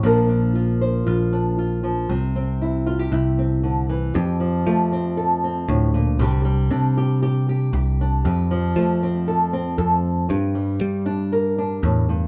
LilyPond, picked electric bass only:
\new Staff \with { instrumentName = "Picked electric bass" } { \clef bass \time 4/4 \key f \major \tempo 4 = 117 bes,,2 bes,,2 | c,2 c,2 | f,4 f2 d,4 | c,4 c2 c,4 |
f,4 f2 f,4 | g,4 g2 e,4 | }